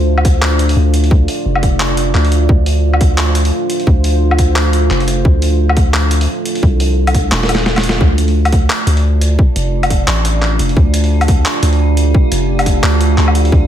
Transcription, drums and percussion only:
0.18 low woodblock
0.25 kick, closed hi-hat
0.42 clap
0.59 closed hi-hat
0.69 open hi-hat
0.94 closed hi-hat
1.04 open hi-hat
1.11 kick
1.28 open hi-hat
1.55 low woodblock
1.63 kick, closed hi-hat
1.80 clap
1.97 closed hi-hat
2.15 clap
2.25 open hi-hat
2.32 closed hi-hat
2.49 kick
2.66 open hi-hat
2.94 low woodblock
3.01 kick, closed hi-hat
3.18 clap
3.35 closed hi-hat
3.45 open hi-hat
3.70 closed hi-hat
3.80 open hi-hat
3.87 kick
4.04 open hi-hat
4.31 low woodblock
4.39 kick, closed hi-hat
4.56 clap
4.73 closed hi-hat
4.90 clap
5.00 open hi-hat
5.08 closed hi-hat
5.25 kick
5.42 open hi-hat
5.69 low woodblock
5.77 kick, closed hi-hat
5.94 clap
6.11 closed hi-hat
6.21 open hi-hat
6.46 closed hi-hat
6.55 open hi-hat
6.63 kick
6.80 open hi-hat
7.07 closed hi-hat, low woodblock
7.15 kick, closed hi-hat
7.32 snare, clap
7.43 snare
7.49 closed hi-hat, low woodblock
7.55 snare
7.66 snare
7.76 snare, open hi-hat, low woodblock
7.83 closed hi-hat
7.89 snare
8.01 kick
8.18 closed hi-hat
8.28 open hi-hat
8.45 closed hi-hat, low woodblock
8.52 kick, closed hi-hat
8.70 clap
8.87 closed hi-hat
8.97 open hi-hat
9.21 closed hi-hat
9.39 kick
9.56 closed hi-hat
9.83 closed hi-hat, low woodblock
9.90 kick, closed hi-hat
10.08 clap
10.25 closed hi-hat
10.42 clap
10.59 closed hi-hat
10.69 open hi-hat
10.77 kick
10.94 closed hi-hat
11.04 open hi-hat
11.21 closed hi-hat, low woodblock
11.28 kick, closed hi-hat
11.45 clap
11.63 closed hi-hat
11.73 open hi-hat
11.97 closed hi-hat
12.14 kick
12.32 closed hi-hat
12.59 closed hi-hat, low woodblock
12.66 kick, closed hi-hat
12.83 clap
13.01 closed hi-hat
13.18 clap
13.28 low woodblock
13.35 closed hi-hat
13.45 open hi-hat
13.52 kick

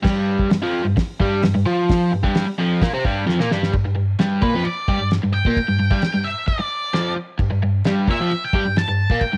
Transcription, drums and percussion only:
0.05 kick, snare, crash
0.39 kick
0.50 snare, open hi-hat
0.97 kick, snare, open hi-hat
1.20 kick
1.43 snare, open hi-hat
1.89 kick, snare, open hi-hat
2.24 kick
2.35 snare, open hi-hat
2.82 kick, snare, open hi-hat
3.05 kick
3.29 snare
3.40 snare
3.51 snare
3.63 snare
3.73 kick, crash
4.19 snare, crash
4.42 kick
4.65 crash
4.88 kick
5.11 snare, crash
5.45 kick
5.57 kick, crash
5.91 kick
6.02 snare, crash
6.48 kick, crash
6.93 snare, crash
7.39 kick, crash
7.84 snare, crash
8.08 kick
8.31 crash
8.53 kick
8.76 snare, crash
9.10 kick
9.21 kick, crash

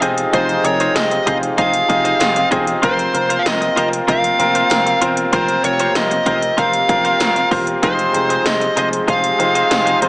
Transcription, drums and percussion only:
0.02 closed hi-hat
0.18 closed hi-hat
0.33 kick, closed hi-hat
0.49 closed hi-hat
0.65 closed hi-hat
0.80 closed hi-hat
0.96 snare, closed hi-hat, tambourine
1.11 closed hi-hat
1.27 kick, closed hi-hat
1.43 closed hi-hat
1.58 kick, closed hi-hat
1.74 closed hi-hat
1.90 kick, closed hi-hat
2.05 closed hi-hat
2.20 snare, closed hi-hat, tambourine
2.36 closed hi-hat
2.52 kick, closed hi-hat
2.67 closed hi-hat
2.83 kick, closed hi-hat
2.99 closed hi-hat
3.15 closed hi-hat
3.30 closed hi-hat
3.46 snare, closed hi-hat, tambourine
3.62 closed hi-hat
3.77 closed hi-hat
3.93 closed hi-hat
4.08 kick, closed hi-hat
4.24 closed hi-hat
4.40 closed hi-hat
4.55 closed hi-hat
4.70 snare, closed hi-hat, tambourine
4.87 closed hi-hat
5.02 closed hi-hat
5.17 closed hi-hat
5.33 kick, closed hi-hat
5.48 closed hi-hat
5.64 closed hi-hat
5.79 closed hi-hat
5.95 snare, closed hi-hat, tambourine
6.11 closed hi-hat
6.26 kick, closed hi-hat
6.42 closed hi-hat
6.58 kick, closed hi-hat
6.73 closed hi-hat
6.89 kick, closed hi-hat
7.05 closed hi-hat
7.20 snare, closed hi-hat, tambourine
7.36 closed hi-hat
7.51 kick, open hi-hat
7.67 closed hi-hat
7.83 kick, closed hi-hat
7.99 closed hi-hat
8.14 closed hi-hat
8.30 closed hi-hat
8.46 snare, closed hi-hat, tambourine
8.61 closed hi-hat
8.77 closed hi-hat
8.93 closed hi-hat
9.08 kick, closed hi-hat
9.24 closed hi-hat
9.40 closed hi-hat
9.55 closed hi-hat
9.71 snare, closed hi-hat, tambourine
9.87 closed hi-hat
10.02 closed hi-hat

